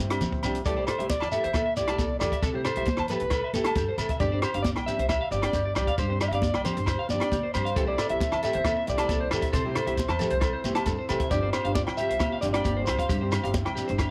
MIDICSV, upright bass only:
0, 0, Header, 1, 2, 480
1, 0, Start_track
1, 0, Key_signature, 0, "major"
1, 0, Tempo, 444444
1, 707, Time_signature, 4, 2, 24, 8
1, 15233, End_track
2, 0, Start_track
2, 0, Title_t, "Upright bass"
2, 0, Program_c, 0, 32
2, 0, Note_on_c, 0, 43, 94
2, 171, Note_off_c, 0, 43, 0
2, 230, Note_on_c, 0, 38, 86
2, 445, Note_off_c, 0, 38, 0
2, 467, Note_on_c, 0, 36, 78
2, 683, Note_off_c, 0, 36, 0
2, 711, Note_on_c, 0, 36, 93
2, 892, Note_off_c, 0, 36, 0
2, 1070, Note_on_c, 0, 36, 81
2, 1253, Note_off_c, 0, 36, 0
2, 1315, Note_on_c, 0, 40, 80
2, 1402, Note_off_c, 0, 40, 0
2, 1563, Note_on_c, 0, 40, 71
2, 1741, Note_off_c, 0, 40, 0
2, 1922, Note_on_c, 0, 36, 79
2, 2099, Note_off_c, 0, 36, 0
2, 2146, Note_on_c, 0, 36, 80
2, 2329, Note_off_c, 0, 36, 0
2, 2392, Note_on_c, 0, 40, 70
2, 2483, Note_off_c, 0, 40, 0
2, 2620, Note_on_c, 0, 48, 100
2, 2899, Note_off_c, 0, 48, 0
2, 2991, Note_on_c, 0, 36, 84
2, 3173, Note_off_c, 0, 36, 0
2, 3225, Note_on_c, 0, 40, 79
2, 3315, Note_off_c, 0, 40, 0
2, 3470, Note_on_c, 0, 36, 84
2, 3652, Note_off_c, 0, 36, 0
2, 3817, Note_on_c, 0, 36, 79
2, 3913, Note_off_c, 0, 36, 0
2, 4059, Note_on_c, 0, 43, 86
2, 4155, Note_off_c, 0, 43, 0
2, 4296, Note_on_c, 0, 48, 77
2, 4482, Note_off_c, 0, 48, 0
2, 4540, Note_on_c, 0, 31, 96
2, 4724, Note_off_c, 0, 31, 0
2, 4909, Note_on_c, 0, 31, 75
2, 5091, Note_off_c, 0, 31, 0
2, 5154, Note_on_c, 0, 36, 79
2, 5239, Note_off_c, 0, 36, 0
2, 5388, Note_on_c, 0, 36, 81
2, 5570, Note_off_c, 0, 36, 0
2, 5736, Note_on_c, 0, 31, 82
2, 5921, Note_off_c, 0, 31, 0
2, 5984, Note_on_c, 0, 31, 84
2, 6166, Note_off_c, 0, 31, 0
2, 6219, Note_on_c, 0, 36, 82
2, 6314, Note_off_c, 0, 36, 0
2, 6461, Note_on_c, 0, 43, 99
2, 6738, Note_off_c, 0, 43, 0
2, 6817, Note_on_c, 0, 31, 88
2, 7003, Note_off_c, 0, 31, 0
2, 7072, Note_on_c, 0, 36, 78
2, 7158, Note_off_c, 0, 36, 0
2, 7311, Note_on_c, 0, 31, 87
2, 7491, Note_off_c, 0, 31, 0
2, 7664, Note_on_c, 0, 31, 72
2, 7756, Note_off_c, 0, 31, 0
2, 7904, Note_on_c, 0, 38, 87
2, 7997, Note_off_c, 0, 38, 0
2, 8157, Note_on_c, 0, 43, 68
2, 8333, Note_off_c, 0, 43, 0
2, 8385, Note_on_c, 0, 36, 91
2, 8566, Note_off_c, 0, 36, 0
2, 8751, Note_on_c, 0, 36, 72
2, 8931, Note_off_c, 0, 36, 0
2, 8990, Note_on_c, 0, 40, 75
2, 9076, Note_off_c, 0, 40, 0
2, 9234, Note_on_c, 0, 40, 85
2, 9413, Note_off_c, 0, 40, 0
2, 9590, Note_on_c, 0, 36, 81
2, 9769, Note_off_c, 0, 36, 0
2, 9817, Note_on_c, 0, 36, 78
2, 10001, Note_off_c, 0, 36, 0
2, 10061, Note_on_c, 0, 40, 73
2, 10155, Note_off_c, 0, 40, 0
2, 10293, Note_on_c, 0, 48, 108
2, 10573, Note_off_c, 0, 48, 0
2, 10660, Note_on_c, 0, 36, 79
2, 10844, Note_off_c, 0, 36, 0
2, 10896, Note_on_c, 0, 40, 84
2, 10987, Note_off_c, 0, 40, 0
2, 11135, Note_on_c, 0, 36, 88
2, 11321, Note_off_c, 0, 36, 0
2, 11493, Note_on_c, 0, 36, 87
2, 11590, Note_off_c, 0, 36, 0
2, 11733, Note_on_c, 0, 43, 93
2, 11830, Note_off_c, 0, 43, 0
2, 11986, Note_on_c, 0, 48, 75
2, 12167, Note_off_c, 0, 48, 0
2, 12214, Note_on_c, 0, 31, 96
2, 12400, Note_off_c, 0, 31, 0
2, 12583, Note_on_c, 0, 31, 80
2, 12767, Note_off_c, 0, 31, 0
2, 12826, Note_on_c, 0, 36, 77
2, 12914, Note_off_c, 0, 36, 0
2, 13071, Note_on_c, 0, 36, 72
2, 13252, Note_off_c, 0, 36, 0
2, 13424, Note_on_c, 0, 31, 84
2, 13606, Note_off_c, 0, 31, 0
2, 13660, Note_on_c, 0, 31, 86
2, 13844, Note_off_c, 0, 31, 0
2, 13910, Note_on_c, 0, 36, 77
2, 14002, Note_off_c, 0, 36, 0
2, 14142, Note_on_c, 0, 43, 102
2, 14420, Note_off_c, 0, 43, 0
2, 14514, Note_on_c, 0, 31, 85
2, 14695, Note_off_c, 0, 31, 0
2, 14763, Note_on_c, 0, 36, 83
2, 14846, Note_off_c, 0, 36, 0
2, 15007, Note_on_c, 0, 31, 88
2, 15184, Note_off_c, 0, 31, 0
2, 15233, End_track
0, 0, End_of_file